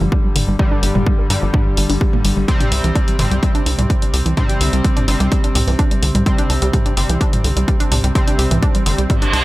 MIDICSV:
0, 0, Header, 1, 6, 480
1, 0, Start_track
1, 0, Tempo, 472441
1, 604, Time_signature, 4, 2, 24, 8
1, 9595, End_track
2, 0, Start_track
2, 0, Title_t, "Analog polysynth"
2, 0, Program_c, 0, 90
2, 0, Note_on_c, 0, 43, 75
2, 0, Note_on_c, 0, 50, 66
2, 0, Note_on_c, 0, 55, 82
2, 575, Note_off_c, 0, 43, 0
2, 575, Note_off_c, 0, 50, 0
2, 575, Note_off_c, 0, 55, 0
2, 602, Note_on_c, 0, 50, 91
2, 602, Note_on_c, 0, 55, 103
2, 603, Note_on_c, 0, 43, 92
2, 1295, Note_off_c, 0, 43, 0
2, 1295, Note_off_c, 0, 50, 0
2, 1295, Note_off_c, 0, 55, 0
2, 1321, Note_on_c, 0, 50, 69
2, 1322, Note_on_c, 0, 43, 75
2, 1322, Note_on_c, 0, 55, 85
2, 2494, Note_off_c, 0, 50, 0
2, 2495, Note_off_c, 0, 43, 0
2, 2495, Note_off_c, 0, 55, 0
2, 2521, Note_on_c, 0, 60, 103
2, 2522, Note_on_c, 0, 48, 97
2, 2522, Note_on_c, 0, 55, 88
2, 3215, Note_off_c, 0, 48, 0
2, 3215, Note_off_c, 0, 55, 0
2, 3215, Note_off_c, 0, 60, 0
2, 3242, Note_on_c, 0, 60, 83
2, 3243, Note_on_c, 0, 48, 76
2, 3243, Note_on_c, 0, 55, 68
2, 4415, Note_off_c, 0, 48, 0
2, 4415, Note_off_c, 0, 55, 0
2, 4415, Note_off_c, 0, 60, 0
2, 4441, Note_on_c, 0, 48, 96
2, 4441, Note_on_c, 0, 55, 90
2, 4441, Note_on_c, 0, 60, 104
2, 5134, Note_off_c, 0, 48, 0
2, 5134, Note_off_c, 0, 55, 0
2, 5134, Note_off_c, 0, 60, 0
2, 5162, Note_on_c, 0, 48, 76
2, 5162, Note_on_c, 0, 55, 66
2, 5162, Note_on_c, 0, 60, 84
2, 6335, Note_off_c, 0, 48, 0
2, 6335, Note_off_c, 0, 55, 0
2, 6335, Note_off_c, 0, 60, 0
2, 6361, Note_on_c, 0, 48, 96
2, 6361, Note_on_c, 0, 60, 105
2, 6362, Note_on_c, 0, 55, 87
2, 7054, Note_off_c, 0, 60, 0
2, 7055, Note_off_c, 0, 48, 0
2, 7055, Note_off_c, 0, 55, 0
2, 7082, Note_on_c, 0, 48, 76
2, 7082, Note_on_c, 0, 55, 71
2, 7082, Note_on_c, 0, 60, 86
2, 8255, Note_off_c, 0, 48, 0
2, 8255, Note_off_c, 0, 55, 0
2, 8255, Note_off_c, 0, 60, 0
2, 8282, Note_on_c, 0, 48, 96
2, 8282, Note_on_c, 0, 55, 86
2, 8282, Note_on_c, 0, 60, 106
2, 8975, Note_off_c, 0, 48, 0
2, 8975, Note_off_c, 0, 55, 0
2, 8975, Note_off_c, 0, 60, 0
2, 9003, Note_on_c, 0, 48, 75
2, 9003, Note_on_c, 0, 55, 72
2, 9003, Note_on_c, 0, 60, 81
2, 9595, Note_off_c, 0, 48, 0
2, 9595, Note_off_c, 0, 55, 0
2, 9595, Note_off_c, 0, 60, 0
2, 9595, End_track
3, 0, Start_track
3, 0, Title_t, "Synth arpeggio sound"
3, 0, Program_c, 1, 84
3, 7, Note_on_c, 1, 53, 78
3, 79, Note_off_c, 1, 53, 0
3, 122, Note_on_c, 1, 62, 97
3, 238, Note_off_c, 1, 62, 0
3, 247, Note_on_c, 1, 55, 74
3, 290, Note_off_c, 1, 55, 0
3, 362, Note_on_c, 1, 50, 76
3, 440, Note_off_c, 1, 50, 0
3, 486, Note_on_c, 1, 55, 75
3, 558, Note_off_c, 1, 55, 0
3, 601, Note_on_c, 1, 55, 96
3, 679, Note_off_c, 1, 55, 0
3, 725, Note_on_c, 1, 62, 98
3, 828, Note_off_c, 1, 62, 0
3, 840, Note_on_c, 1, 62, 74
3, 919, Note_off_c, 1, 62, 0
3, 965, Note_on_c, 1, 55, 99
3, 1038, Note_off_c, 1, 55, 0
3, 1081, Note_on_c, 1, 55, 85
3, 1128, Note_off_c, 1, 55, 0
3, 1205, Note_on_c, 1, 70, 75
3, 1250, Note_off_c, 1, 70, 0
3, 1320, Note_on_c, 1, 67, 77
3, 1438, Note_off_c, 1, 67, 0
3, 1445, Note_on_c, 1, 53, 73
3, 1518, Note_off_c, 1, 53, 0
3, 1560, Note_on_c, 1, 62, 107
3, 1677, Note_off_c, 1, 62, 0
3, 1685, Note_on_c, 1, 55, 75
3, 1729, Note_off_c, 1, 55, 0
3, 1800, Note_on_c, 1, 55, 75
3, 1879, Note_off_c, 1, 55, 0
3, 1925, Note_on_c, 1, 62, 101
3, 2034, Note_off_c, 1, 62, 0
3, 2041, Note_on_c, 1, 67, 83
3, 2119, Note_off_c, 1, 67, 0
3, 2166, Note_on_c, 1, 58, 74
3, 2274, Note_off_c, 1, 58, 0
3, 2280, Note_on_c, 1, 55, 74
3, 2393, Note_off_c, 1, 55, 0
3, 2405, Note_on_c, 1, 55, 76
3, 2449, Note_off_c, 1, 55, 0
3, 2520, Note_on_c, 1, 55, 75
3, 2568, Note_off_c, 1, 55, 0
3, 2645, Note_on_c, 1, 62, 74
3, 2718, Note_off_c, 1, 62, 0
3, 2761, Note_on_c, 1, 67, 77
3, 2878, Note_off_c, 1, 67, 0
3, 2886, Note_on_c, 1, 52, 71
3, 2958, Note_off_c, 1, 52, 0
3, 3000, Note_on_c, 1, 62, 98
3, 3118, Note_off_c, 1, 62, 0
3, 3126, Note_on_c, 1, 55, 74
3, 3170, Note_off_c, 1, 55, 0
3, 3241, Note_on_c, 1, 50, 73
3, 3319, Note_off_c, 1, 50, 0
3, 3365, Note_on_c, 1, 55, 76
3, 3438, Note_off_c, 1, 55, 0
3, 3481, Note_on_c, 1, 55, 108
3, 3559, Note_off_c, 1, 55, 0
3, 3605, Note_on_c, 1, 62, 103
3, 3709, Note_off_c, 1, 62, 0
3, 3721, Note_on_c, 1, 62, 77
3, 3799, Note_off_c, 1, 62, 0
3, 3846, Note_on_c, 1, 55, 98
3, 3918, Note_off_c, 1, 55, 0
3, 3961, Note_on_c, 1, 55, 84
3, 4008, Note_off_c, 1, 55, 0
3, 4085, Note_on_c, 1, 62, 73
3, 4158, Note_off_c, 1, 62, 0
3, 4201, Note_on_c, 1, 67, 75
3, 4318, Note_off_c, 1, 67, 0
3, 4325, Note_on_c, 1, 52, 76
3, 4398, Note_off_c, 1, 52, 0
3, 4441, Note_on_c, 1, 62, 98
3, 4558, Note_off_c, 1, 62, 0
3, 4566, Note_on_c, 1, 55, 75
3, 4610, Note_off_c, 1, 55, 0
3, 4681, Note_on_c, 1, 50, 75
3, 4759, Note_off_c, 1, 50, 0
3, 4805, Note_on_c, 1, 55, 75
3, 4878, Note_off_c, 1, 55, 0
3, 4920, Note_on_c, 1, 55, 103
3, 4999, Note_off_c, 1, 55, 0
3, 5045, Note_on_c, 1, 62, 96
3, 5149, Note_off_c, 1, 62, 0
3, 5161, Note_on_c, 1, 62, 76
3, 5239, Note_off_c, 1, 62, 0
3, 5286, Note_on_c, 1, 55, 97
3, 5358, Note_off_c, 1, 55, 0
3, 5401, Note_on_c, 1, 55, 89
3, 5448, Note_off_c, 1, 55, 0
3, 5525, Note_on_c, 1, 62, 75
3, 5598, Note_off_c, 1, 62, 0
3, 5641, Note_on_c, 1, 67, 75
3, 5758, Note_off_c, 1, 67, 0
3, 5766, Note_on_c, 1, 52, 73
3, 5839, Note_off_c, 1, 52, 0
3, 5881, Note_on_c, 1, 62, 100
3, 5998, Note_off_c, 1, 62, 0
3, 6007, Note_on_c, 1, 55, 74
3, 6050, Note_off_c, 1, 55, 0
3, 6122, Note_on_c, 1, 50, 73
3, 6200, Note_off_c, 1, 50, 0
3, 6247, Note_on_c, 1, 55, 79
3, 6319, Note_off_c, 1, 55, 0
3, 6362, Note_on_c, 1, 55, 98
3, 6440, Note_off_c, 1, 55, 0
3, 6486, Note_on_c, 1, 62, 97
3, 6590, Note_off_c, 1, 62, 0
3, 6602, Note_on_c, 1, 62, 75
3, 6680, Note_off_c, 1, 62, 0
3, 6727, Note_on_c, 1, 55, 99
3, 6799, Note_off_c, 1, 55, 0
3, 6843, Note_on_c, 1, 55, 84
3, 6889, Note_off_c, 1, 55, 0
3, 6967, Note_on_c, 1, 62, 76
3, 7039, Note_off_c, 1, 62, 0
3, 7084, Note_on_c, 1, 67, 77
3, 7199, Note_off_c, 1, 67, 0
3, 7208, Note_on_c, 1, 52, 73
3, 7279, Note_off_c, 1, 52, 0
3, 7322, Note_on_c, 1, 62, 105
3, 7438, Note_off_c, 1, 62, 0
3, 7446, Note_on_c, 1, 55, 73
3, 7490, Note_off_c, 1, 55, 0
3, 7561, Note_on_c, 1, 50, 74
3, 7639, Note_off_c, 1, 50, 0
3, 7687, Note_on_c, 1, 55, 72
3, 7759, Note_off_c, 1, 55, 0
3, 7802, Note_on_c, 1, 55, 103
3, 7880, Note_off_c, 1, 55, 0
3, 7926, Note_on_c, 1, 62, 97
3, 8030, Note_off_c, 1, 62, 0
3, 8042, Note_on_c, 1, 62, 75
3, 8120, Note_off_c, 1, 62, 0
3, 8167, Note_on_c, 1, 55, 97
3, 8239, Note_off_c, 1, 55, 0
3, 8283, Note_on_c, 1, 55, 78
3, 8329, Note_off_c, 1, 55, 0
3, 8407, Note_on_c, 1, 62, 74
3, 8479, Note_off_c, 1, 62, 0
3, 8522, Note_on_c, 1, 67, 77
3, 8638, Note_off_c, 1, 67, 0
3, 8647, Note_on_c, 1, 52, 76
3, 8719, Note_off_c, 1, 52, 0
3, 8761, Note_on_c, 1, 62, 100
3, 8878, Note_off_c, 1, 62, 0
3, 8886, Note_on_c, 1, 55, 77
3, 8930, Note_off_c, 1, 55, 0
3, 9003, Note_on_c, 1, 50, 75
3, 9080, Note_off_c, 1, 50, 0
3, 9129, Note_on_c, 1, 55, 77
3, 9200, Note_off_c, 1, 55, 0
3, 9244, Note_on_c, 1, 55, 104
3, 9321, Note_off_c, 1, 55, 0
3, 9368, Note_on_c, 1, 62, 98
3, 9471, Note_off_c, 1, 62, 0
3, 9483, Note_on_c, 1, 62, 99
3, 9529, Note_off_c, 1, 62, 0
3, 9595, End_track
4, 0, Start_track
4, 0, Title_t, "Analog synth bass"
4, 0, Program_c, 2, 38
4, 6, Note_on_c, 2, 31, 77
4, 93, Note_off_c, 2, 31, 0
4, 361, Note_on_c, 2, 31, 90
4, 455, Note_off_c, 2, 31, 0
4, 484, Note_on_c, 2, 31, 80
4, 572, Note_off_c, 2, 31, 0
4, 841, Note_on_c, 2, 31, 92
4, 935, Note_off_c, 2, 31, 0
4, 965, Note_on_c, 2, 31, 79
4, 1052, Note_off_c, 2, 31, 0
4, 1321, Note_on_c, 2, 43, 92
4, 1415, Note_off_c, 2, 43, 0
4, 1445, Note_on_c, 2, 31, 80
4, 1532, Note_off_c, 2, 31, 0
4, 1801, Note_on_c, 2, 31, 88
4, 1895, Note_off_c, 2, 31, 0
4, 1926, Note_on_c, 2, 31, 80
4, 2013, Note_off_c, 2, 31, 0
4, 2282, Note_on_c, 2, 31, 85
4, 2375, Note_off_c, 2, 31, 0
4, 2406, Note_on_c, 2, 31, 78
4, 2493, Note_off_c, 2, 31, 0
4, 2761, Note_on_c, 2, 36, 91
4, 2855, Note_off_c, 2, 36, 0
4, 2884, Note_on_c, 2, 36, 79
4, 2972, Note_off_c, 2, 36, 0
4, 3240, Note_on_c, 2, 31, 94
4, 3334, Note_off_c, 2, 31, 0
4, 3365, Note_on_c, 2, 36, 81
4, 3452, Note_off_c, 2, 36, 0
4, 3720, Note_on_c, 2, 36, 92
4, 3814, Note_off_c, 2, 36, 0
4, 3845, Note_on_c, 2, 36, 78
4, 3932, Note_off_c, 2, 36, 0
4, 4201, Note_on_c, 2, 36, 86
4, 4295, Note_off_c, 2, 36, 0
4, 4325, Note_on_c, 2, 36, 84
4, 4412, Note_off_c, 2, 36, 0
4, 4681, Note_on_c, 2, 36, 92
4, 4775, Note_off_c, 2, 36, 0
4, 4806, Note_on_c, 2, 36, 83
4, 4893, Note_off_c, 2, 36, 0
4, 5162, Note_on_c, 2, 31, 90
4, 5255, Note_off_c, 2, 31, 0
4, 5287, Note_on_c, 2, 36, 81
4, 5373, Note_off_c, 2, 36, 0
4, 5641, Note_on_c, 2, 36, 93
4, 5735, Note_off_c, 2, 36, 0
4, 5767, Note_on_c, 2, 36, 77
4, 5853, Note_off_c, 2, 36, 0
4, 6122, Note_on_c, 2, 36, 91
4, 6215, Note_off_c, 2, 36, 0
4, 6247, Note_on_c, 2, 36, 80
4, 6333, Note_off_c, 2, 36, 0
4, 6600, Note_on_c, 2, 36, 91
4, 6694, Note_off_c, 2, 36, 0
4, 6725, Note_on_c, 2, 36, 83
4, 6812, Note_off_c, 2, 36, 0
4, 7081, Note_on_c, 2, 31, 95
4, 7175, Note_off_c, 2, 31, 0
4, 7206, Note_on_c, 2, 36, 82
4, 7293, Note_off_c, 2, 36, 0
4, 7562, Note_on_c, 2, 36, 89
4, 7655, Note_off_c, 2, 36, 0
4, 7686, Note_on_c, 2, 36, 80
4, 7773, Note_off_c, 2, 36, 0
4, 8041, Note_on_c, 2, 36, 92
4, 8135, Note_off_c, 2, 36, 0
4, 8166, Note_on_c, 2, 36, 80
4, 8253, Note_off_c, 2, 36, 0
4, 8521, Note_on_c, 2, 36, 95
4, 8615, Note_off_c, 2, 36, 0
4, 8646, Note_on_c, 2, 36, 81
4, 8733, Note_off_c, 2, 36, 0
4, 9002, Note_on_c, 2, 31, 91
4, 9095, Note_off_c, 2, 31, 0
4, 9127, Note_on_c, 2, 36, 81
4, 9213, Note_off_c, 2, 36, 0
4, 9483, Note_on_c, 2, 36, 91
4, 9576, Note_off_c, 2, 36, 0
4, 9595, End_track
5, 0, Start_track
5, 0, Title_t, "Reverse cymbal"
5, 0, Program_c, 3, 119
5, 9243, Note_on_c, 3, 60, 60
5, 9595, Note_off_c, 3, 60, 0
5, 9595, End_track
6, 0, Start_track
6, 0, Title_t, "Drums"
6, 122, Note_on_c, 9, 36, 116
6, 224, Note_off_c, 9, 36, 0
6, 362, Note_on_c, 9, 45, 85
6, 362, Note_on_c, 9, 46, 103
6, 464, Note_off_c, 9, 45, 0
6, 464, Note_off_c, 9, 46, 0
6, 602, Note_on_c, 9, 36, 116
6, 704, Note_off_c, 9, 36, 0
6, 842, Note_on_c, 9, 46, 102
6, 944, Note_off_c, 9, 46, 0
6, 966, Note_on_c, 9, 45, 91
6, 1068, Note_off_c, 9, 45, 0
6, 1082, Note_on_c, 9, 36, 117
6, 1184, Note_off_c, 9, 36, 0
6, 1322, Note_on_c, 9, 46, 104
6, 1424, Note_off_c, 9, 46, 0
6, 1562, Note_on_c, 9, 36, 119
6, 1562, Note_on_c, 9, 45, 90
6, 1664, Note_off_c, 9, 36, 0
6, 1664, Note_off_c, 9, 45, 0
6, 1801, Note_on_c, 9, 46, 106
6, 1903, Note_off_c, 9, 46, 0
6, 1926, Note_on_c, 9, 46, 59
6, 2028, Note_off_c, 9, 46, 0
6, 2042, Note_on_c, 9, 36, 115
6, 2144, Note_off_c, 9, 36, 0
6, 2166, Note_on_c, 9, 45, 86
6, 2267, Note_off_c, 9, 45, 0
6, 2282, Note_on_c, 9, 46, 104
6, 2383, Note_off_c, 9, 46, 0
6, 2522, Note_on_c, 9, 36, 114
6, 2523, Note_on_c, 9, 42, 50
6, 2623, Note_off_c, 9, 36, 0
6, 2624, Note_off_c, 9, 42, 0
6, 2647, Note_on_c, 9, 42, 52
6, 2647, Note_on_c, 9, 45, 91
6, 2748, Note_off_c, 9, 42, 0
6, 2748, Note_off_c, 9, 45, 0
6, 2761, Note_on_c, 9, 46, 97
6, 2863, Note_off_c, 9, 46, 0
6, 2887, Note_on_c, 9, 42, 52
6, 2988, Note_off_c, 9, 42, 0
6, 3002, Note_on_c, 9, 36, 116
6, 3002, Note_on_c, 9, 42, 54
6, 3104, Note_off_c, 9, 36, 0
6, 3104, Note_off_c, 9, 42, 0
6, 3127, Note_on_c, 9, 42, 51
6, 3229, Note_off_c, 9, 42, 0
6, 3242, Note_on_c, 9, 45, 94
6, 3242, Note_on_c, 9, 46, 100
6, 3343, Note_off_c, 9, 45, 0
6, 3343, Note_off_c, 9, 46, 0
6, 3368, Note_on_c, 9, 42, 51
6, 3469, Note_off_c, 9, 42, 0
6, 3482, Note_on_c, 9, 36, 120
6, 3482, Note_on_c, 9, 42, 53
6, 3583, Note_off_c, 9, 36, 0
6, 3583, Note_off_c, 9, 42, 0
6, 3606, Note_on_c, 9, 42, 48
6, 3708, Note_off_c, 9, 42, 0
6, 3722, Note_on_c, 9, 46, 94
6, 3824, Note_off_c, 9, 46, 0
6, 3847, Note_on_c, 9, 42, 50
6, 3847, Note_on_c, 9, 45, 95
6, 3948, Note_off_c, 9, 42, 0
6, 3948, Note_off_c, 9, 45, 0
6, 3962, Note_on_c, 9, 36, 111
6, 3963, Note_on_c, 9, 42, 50
6, 4064, Note_off_c, 9, 36, 0
6, 4065, Note_off_c, 9, 42, 0
6, 4087, Note_on_c, 9, 42, 52
6, 4188, Note_off_c, 9, 42, 0
6, 4203, Note_on_c, 9, 46, 98
6, 4305, Note_off_c, 9, 46, 0
6, 4327, Note_on_c, 9, 42, 50
6, 4429, Note_off_c, 9, 42, 0
6, 4442, Note_on_c, 9, 36, 109
6, 4442, Note_on_c, 9, 42, 53
6, 4442, Note_on_c, 9, 45, 93
6, 4543, Note_off_c, 9, 42, 0
6, 4543, Note_off_c, 9, 45, 0
6, 4544, Note_off_c, 9, 36, 0
6, 4567, Note_on_c, 9, 42, 54
6, 4668, Note_off_c, 9, 42, 0
6, 4682, Note_on_c, 9, 46, 97
6, 4783, Note_off_c, 9, 46, 0
6, 4807, Note_on_c, 9, 42, 55
6, 4908, Note_off_c, 9, 42, 0
6, 4922, Note_on_c, 9, 36, 113
6, 4922, Note_on_c, 9, 42, 55
6, 5024, Note_off_c, 9, 36, 0
6, 5024, Note_off_c, 9, 42, 0
6, 5046, Note_on_c, 9, 42, 49
6, 5046, Note_on_c, 9, 45, 91
6, 5148, Note_off_c, 9, 42, 0
6, 5148, Note_off_c, 9, 45, 0
6, 5161, Note_on_c, 9, 46, 101
6, 5263, Note_off_c, 9, 46, 0
6, 5286, Note_on_c, 9, 42, 52
6, 5388, Note_off_c, 9, 42, 0
6, 5402, Note_on_c, 9, 36, 114
6, 5402, Note_on_c, 9, 42, 55
6, 5503, Note_off_c, 9, 42, 0
6, 5504, Note_off_c, 9, 36, 0
6, 5527, Note_on_c, 9, 42, 54
6, 5629, Note_off_c, 9, 42, 0
6, 5642, Note_on_c, 9, 45, 93
6, 5642, Note_on_c, 9, 46, 98
6, 5744, Note_off_c, 9, 45, 0
6, 5744, Note_off_c, 9, 46, 0
6, 5767, Note_on_c, 9, 46, 56
6, 5868, Note_off_c, 9, 46, 0
6, 5882, Note_on_c, 9, 36, 112
6, 5883, Note_on_c, 9, 42, 52
6, 5984, Note_off_c, 9, 36, 0
6, 5984, Note_off_c, 9, 42, 0
6, 6007, Note_on_c, 9, 42, 53
6, 6109, Note_off_c, 9, 42, 0
6, 6122, Note_on_c, 9, 46, 94
6, 6224, Note_off_c, 9, 46, 0
6, 6247, Note_on_c, 9, 42, 52
6, 6247, Note_on_c, 9, 45, 89
6, 6349, Note_off_c, 9, 42, 0
6, 6349, Note_off_c, 9, 45, 0
6, 6362, Note_on_c, 9, 36, 108
6, 6362, Note_on_c, 9, 42, 55
6, 6464, Note_off_c, 9, 36, 0
6, 6464, Note_off_c, 9, 42, 0
6, 6487, Note_on_c, 9, 42, 56
6, 6588, Note_off_c, 9, 42, 0
6, 6602, Note_on_c, 9, 46, 93
6, 6704, Note_off_c, 9, 46, 0
6, 6726, Note_on_c, 9, 42, 54
6, 6827, Note_off_c, 9, 42, 0
6, 6842, Note_on_c, 9, 36, 104
6, 6842, Note_on_c, 9, 42, 55
6, 6842, Note_on_c, 9, 45, 94
6, 6944, Note_off_c, 9, 36, 0
6, 6944, Note_off_c, 9, 42, 0
6, 6944, Note_off_c, 9, 45, 0
6, 6967, Note_on_c, 9, 42, 54
6, 7069, Note_off_c, 9, 42, 0
6, 7083, Note_on_c, 9, 46, 94
6, 7185, Note_off_c, 9, 46, 0
6, 7208, Note_on_c, 9, 42, 56
6, 7310, Note_off_c, 9, 42, 0
6, 7322, Note_on_c, 9, 36, 112
6, 7324, Note_on_c, 9, 42, 58
6, 7424, Note_off_c, 9, 36, 0
6, 7425, Note_off_c, 9, 42, 0
6, 7448, Note_on_c, 9, 42, 56
6, 7448, Note_on_c, 9, 45, 91
6, 7550, Note_off_c, 9, 42, 0
6, 7550, Note_off_c, 9, 45, 0
6, 7563, Note_on_c, 9, 46, 95
6, 7665, Note_off_c, 9, 46, 0
6, 7688, Note_on_c, 9, 42, 55
6, 7789, Note_off_c, 9, 42, 0
6, 7803, Note_on_c, 9, 36, 107
6, 7803, Note_on_c, 9, 42, 53
6, 7904, Note_off_c, 9, 36, 0
6, 7905, Note_off_c, 9, 42, 0
6, 7928, Note_on_c, 9, 42, 55
6, 8029, Note_off_c, 9, 42, 0
6, 8044, Note_on_c, 9, 45, 90
6, 8044, Note_on_c, 9, 46, 97
6, 8145, Note_off_c, 9, 45, 0
6, 8145, Note_off_c, 9, 46, 0
6, 8169, Note_on_c, 9, 42, 54
6, 8270, Note_off_c, 9, 42, 0
6, 8283, Note_on_c, 9, 36, 111
6, 8283, Note_on_c, 9, 42, 58
6, 8385, Note_off_c, 9, 36, 0
6, 8385, Note_off_c, 9, 42, 0
6, 8408, Note_on_c, 9, 42, 57
6, 8509, Note_off_c, 9, 42, 0
6, 8523, Note_on_c, 9, 46, 96
6, 8624, Note_off_c, 9, 46, 0
6, 8648, Note_on_c, 9, 42, 58
6, 8648, Note_on_c, 9, 45, 87
6, 8749, Note_off_c, 9, 42, 0
6, 8749, Note_off_c, 9, 45, 0
6, 8763, Note_on_c, 9, 36, 116
6, 8763, Note_on_c, 9, 42, 59
6, 8865, Note_off_c, 9, 36, 0
6, 8865, Note_off_c, 9, 42, 0
6, 8887, Note_on_c, 9, 42, 54
6, 8989, Note_off_c, 9, 42, 0
6, 9004, Note_on_c, 9, 46, 97
6, 9105, Note_off_c, 9, 46, 0
6, 9128, Note_on_c, 9, 42, 54
6, 9230, Note_off_c, 9, 42, 0
6, 9243, Note_on_c, 9, 36, 115
6, 9244, Note_on_c, 9, 42, 58
6, 9244, Note_on_c, 9, 45, 89
6, 9345, Note_off_c, 9, 36, 0
6, 9345, Note_off_c, 9, 42, 0
6, 9345, Note_off_c, 9, 45, 0
6, 9368, Note_on_c, 9, 42, 56
6, 9469, Note_off_c, 9, 42, 0
6, 9484, Note_on_c, 9, 46, 97
6, 9585, Note_off_c, 9, 46, 0
6, 9595, End_track
0, 0, End_of_file